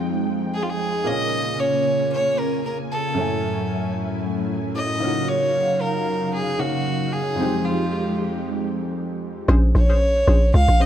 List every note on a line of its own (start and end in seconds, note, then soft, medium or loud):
0.00 1.01 F2 medium
0.00 1.04 F3 medium
0.00 1.02 G#3 medium
0.00 1.04 G#3 medium
0.00 1.03 C4 medium
0.00 1.02 D#4 medium
0.00 1.04 D#4 medium
0.00 1.04 G5 medium
0.00 1.05 G5 medium
0.54 0.64 G#4 medium
0.62 0.71 F4 medium
0.70 1.09 G#4 medium
1.04 3.12 A#2 medium
1.04 3.15 C#3 medium
1.04 3.13 A#3 medium
1.04 3.15 A#3 medium
1.04 3.15 C#4 medium
1.04 3.13 C#4 medium
1.04 1.61 D#5 loud
1.04 4.97 G#5 medium
1.09 3.14 F4 medium
1.09 3.15 G#4 medium
1.60 2.12 C#5 loud
2.13 2.40 C#5 loud
2.39 2.65 A#4 medium
2.65 2.77 A#4 medium
2.92 3.92 A4 medium
3.14 4.96 F#2 medium
3.14 4.99 A2 medium
3.14 7.34 F#3 medium
3.14 4.97 A3 medium
3.14 4.98 C#4 medium
3.14 4.99 E4 medium
3.19 4.99 E4 medium
3.19 5.00 G#5 medium
4.76 5.30 D#5 loud
4.99 7.35 C#3 medium
4.99 6.55 D#3 medium
4.99 6.55 A#3 medium
4.99 6.56 C#4 medium
4.99 9.44 D#4 medium
4.99 7.35 F5 medium
5.04 6.57 F4 medium
5.04 6.58 F#4 medium
5.28 5.82 C#5 loud
5.81 6.33 A#4 loud
6.34 6.61 G#4 loud
6.58 7.37 D#3 soft
6.58 7.38 A#3 soft
6.58 7.38 C#4 soft
6.58 7.14 F#4 medium
6.58 7.39 F#4 medium
6.58 7.39 F5 soft
7.12 7.66 G#4 medium
7.35 9.43 F2 medium
7.35 9.46 F3 medium
7.35 9.44 G#3 medium
7.35 9.46 G#3 medium
7.35 9.45 C4 medium
7.35 9.46 G4 medium
7.40 9.46 D#4 medium
7.40 9.47 G4 medium
7.65 8.17 F4 medium
9.48 9.73 A#1 loud
9.48 9.60 C#4 loud
9.48 9.60 G#4 medium
9.48 9.60 C5 loud
9.75 10.24 A#1 loud
9.75 10.50 C#5 loud
9.89 9.99 C#4 medium
9.89 9.99 G#4 medium
9.89 9.99 C5 medium
10.27 10.52 A#1 loud
10.27 10.39 C#4 medium
10.27 10.39 G#4 medium
10.27 10.39 C5 medium
10.54 10.67 C#2 loud
10.54 10.82 F5 loud
10.68 10.86 A#1 medium
10.80 10.86 C#4 medium
10.80 10.86 G#4 medium
10.80 10.86 C5 medium
10.80 10.86 D#5 loud